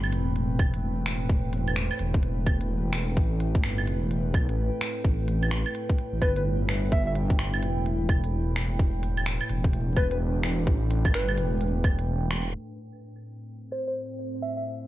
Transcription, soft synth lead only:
6.22 6.31 B4 medium
6.37 6.42 B4 medium
6.92 7.02 E5 medium
7.07 7.13 E5 medium
9.97 10.06 B4 medium
10.12 10.17 B4 medium
11.15 11.61 B4 medium
13.72 13.81 C5 medium
13.87 13.93 C5 medium
14.42 14.52 E5 medium
14.57 14.63 E5 medium

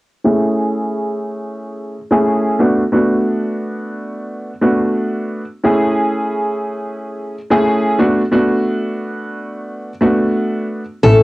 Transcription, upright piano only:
0.24 1.95 A3 medium
0.24 1.95 C#4 medium
0.24 1.95 E4 medium
0.24 1.96 G#4 medium
2.11 2.58 A3 medium
2.11 2.60 C#4 medium
2.11 2.60 E4 medium
2.11 2.60 G#4 loud
2.59 2.81 A3 medium
2.59 2.81 B3 medium
2.59 2.81 D4 medium
2.59 2.82 F#4 loud
2.92 4.49 A3 medium
2.92 4.50 B3 medium
2.92 4.50 D4 medium
2.92 4.50 F#4 loud
4.61 5.41 A3 medium
4.61 5.41 B3 medium
4.61 5.41 D4 medium
4.61 5.41 F#4 medium
5.64 7.34 A3 medium
5.64 7.35 C#4 medium
5.64 7.35 E4 medium
5.64 7.35 G#4 loud
7.50 7.97 A3 medium
7.50 7.99 C#4 medium
7.50 8.00 E4 medium
7.50 8.00 G#4 loud
7.99 8.20 A3 medium
7.99 8.21 B3 medium
7.99 8.21 D4 medium
7.99 8.21 F#4 loud
8.32 9.89 A3 medium
8.32 9.89 B3 medium
8.32 9.89 D4 medium
8.32 9.89 F#4 loud
10.01 10.80 A3 medium
10.01 10.80 B3 medium
10.01 10.80 D4 medium
10.01 10.80 F#4 loud
11.03 11.23 A3 medium
11.03 11.23 C#4 medium
11.03 11.23 E4 medium
11.03 11.23 A4 loud

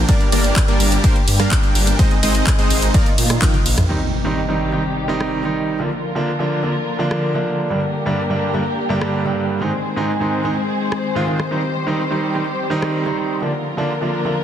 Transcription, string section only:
0.00 1.95 A#2 medium
0.00 1.95 D3 medium
0.09 1.97 G3 medium
0.09 1.97 D4 medium
0.09 1.97 G4 medium
1.99 2.93 C3 medium
1.99 3.88 D#3 medium
1.99 2.93 G#3 medium
1.99 3.88 D#4 medium
1.99 2.93 G#4 medium
2.94 3.89 A#2 medium
2.94 3.89 F3 medium
2.94 3.89 F4 medium
3.90 5.78 C3 medium
3.90 5.78 D#3 medium
3.90 5.78 G3 medium
3.90 5.78 D#4 medium
3.90 5.78 G4 medium
5.80 9.57 D3 medium
5.80 7.69 F3 medium
5.80 7.69 A#3 medium
5.80 7.69 F4 medium
5.80 7.69 A#4 medium
7.71 9.59 G3 medium
7.71 9.59 A#3 medium
7.71 9.59 G4 medium
7.71 9.59 A#4 medium
9.61 13.38 D#3 medium
9.61 11.50 G#3 medium
9.61 11.50 C4 medium
9.61 11.50 G#4 medium
9.61 13.38 C5 medium
11.51 13.40 G3 medium
11.51 13.40 C4 medium
11.51 13.40 G4 medium
13.42 14.44 D3 medium
13.42 14.44 F3 medium
13.42 14.44 A#3 medium
13.42 14.44 F4 medium
13.42 14.44 A#4 medium

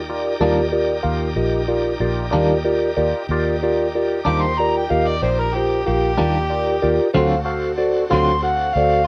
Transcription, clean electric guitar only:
0.41 0.61 D#3 medium
0.41 0.61 G3 medium
0.41 0.61 A#3 medium
0.41 0.60 D4 medium
2.33 2.53 D#3 medium
2.33 2.53 G3 medium
2.33 2.53 A#3 medium
2.33 2.52 D4 medium
4.25 4.46 D#3 medium
4.25 4.46 G3 medium
4.25 4.46 A#3 medium
4.25 4.45 D4 medium
6.18 6.38 D#3 medium
6.18 6.38 G3 medium
6.18 6.38 A#3 medium
6.18 6.38 D4 medium
7.15 7.34 D3 medium
7.15 7.34 F#3 medium
7.15 7.35 C4 medium
7.15 7.36 F4 medium
8.11 8.32 D3 medium
8.11 8.32 F#3 medium
8.11 8.31 C4 medium
8.11 8.31 F4 medium

